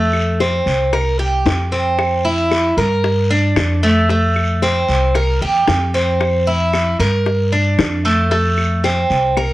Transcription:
Already playing: upright bass F2, cuban tres A3
0.13 high bongo, claves
0.40 cuban tres C4, high bongo, short guiro
0.66 upright bass C2, short guiro
0.93 cuban tres A#4, high bongo, long guiro, claves
1.19 cuban tres G4, high bongo
1.46 upright bass F2, high bongo, low bongo, short guiro
1.72 cuban tres C4, high bongo, short guiro
1.99 high bongo, long guiro, claves
2.25 cuban tres E4
2.51 high bongo, short guiro, claves
2.77 upright bass G2, cuban tres A#4, short guiro
3.04 high bongo, long guiro
3.30 cuban tres D4
3.56 upright bass F2, high bongo, low bongo, short guiro, claves
3.83 cuban tres A3, short guiro
4.09 cuban tres A3, high bongo, long guiro
4.36 high bongo, claves
4.62 cuban tres C4, high bongo, short guiro
4.88 upright bass C2, short guiro
5.14 cuban tres A#4, high bongo, long guiro, claves
5.41 upright bass E2, cuban tres G4, high bongo
5.67 upright bass F2, high bongo, low bongo, short guiro
5.94 cuban tres C4, high bongo, short guiro
6.20 high bongo, long guiro, claves
6.47 cuban tres E4
6.73 high bongo, short guiro, claves
6.99 upright bass G2, cuban tres A#4, short guiro
7.26 high bongo, long guiro
7.52 cuban tres D4
7.78 upright bass F2, high bongo, low bongo, short guiro, claves
8.05 cuban tres A3, short guiro
8.31 cuban tres A3, high bongo, long guiro
8.58 high bongo, claves
8.84 cuban tres C4, high bongo, short guiro
9.10 upright bass C2, short guiro
9.37 cuban tres A#4, high bongo, long guiro, claves

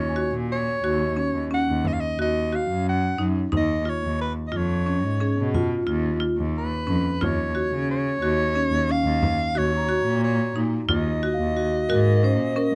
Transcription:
Already playing: cello D#2, soprano saxophone C#5
0.09 celesta G#5
0.16 marimba F#4
0.32 cello A#2
0.52 soprano saxophone C#5
0.84 cello D#2, marimba F#4
1.17 marimba C#4
1.34 cello D#2
1.51 marimba C#4, soprano saxophone F#5, frame drum
1.68 cello D#2
1.85 soprano saxophone D#5, frame drum
1.93 soprano saxophone F5
2.01 soprano saxophone D#5
2.19 cello D#2, marimba F#4, soprano saxophone D#5
2.52 marimba F#4, soprano saxophone F5
2.69 cello F#2
2.89 soprano saxophone F#5
3.18 cello F#2, marimba D#4
3.52 cello D#2, marimba D#4, frame drum
3.57 soprano saxophone D#5
3.85 marimba F4, soprano saxophone C#5
4.03 cello D#2
4.21 soprano saxophone B4
4.48 soprano saxophone D#5
4.52 cello F2, marimba F4
4.57 soprano saxophone C#5
4.86 marimba C#4
5.04 cello G#2
5.20 marimba C#4, vibraphone G#4, frame drum
5.38 cello B2
5.54 vibraphone F4, frame drum
5.87 cello D#2, marimba F4
6.20 marimba F4
6.37 cello D#2
6.58 soprano saxophone B4
6.87 cello F2, marimba C#4
7.21 cello D#2, marimba F4, soprano saxophone C#5, frame drum
7.55 marimba F#4
7.72 cello C#3
7.91 soprano saxophone C#5
8.21 cello D#2, marimba F#4
8.55 marimba C#4
8.71 cello D#2
8.89 marimba C#4, soprano saxophone F5, frame drum
9.04 cello D#2
9.23 frame drum
9.55 cello D#2, marimba F#4, soprano saxophone C#5
9.71 celesta F#4
9.77 celesta A#5
9.89 marimba F#4
10.05 cello A#2
10.24 soprano saxophone C#5
10.56 cello A#2, marimba D#4
10.89 cello D#2, marimba F4, soprano saxophone D#5, frame drum
11.23 marimba F#4, frame drum
11.34 celesta F5
11.39 cello D#2
11.57 vibraphone F#4
11.89 cello G#2, marimba F#4, vibraphone A#4
12.23 marimba C#4, vibraphone C5
12.39 cello A#2
12.56 marimba C#4, vibraphone A#4

